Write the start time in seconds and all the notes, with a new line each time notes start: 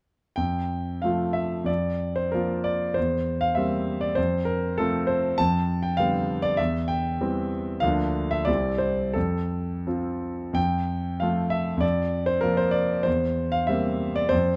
0.36 F2 G5
1.02 F3 A3 F4 F5
1.33 E5
1.64 F2 D5
2.16 C5
2.32 F3 A#3 F4 A#4
2.64 D5
2.94 E2 C5
3.41 F5
3.55 G3 A#3 C4 E5
4.01 D5
4.15 F2 C5
4.45 A#4
4.78 F3 A3 C4 A4
5.07 C5
5.38 F2 A5
5.83 G5
5.97 D3 G3 B3 F5
6.42 D5
6.57 E2 E5
6.88 G5
7.21 E3 G3 C4
7.80 D2 F3 A#3 D4 F5
8.31 E5
8.45 C2 G3 C4 E4 D5
8.78 C5
9.13 F2 A4
9.87 F3 C4 F4
10.53 F2 G5
11.20 F3 A3 F4 F5
11.50 E5
11.77 F2 D5
12.26 C5
12.41 F3 A#3 F4 A#4
12.57 C5
12.71 D5
13.03 E2 C5
13.52 F5
13.67 G3 A#3 C4 E5
14.16 D5
14.29 F2 C5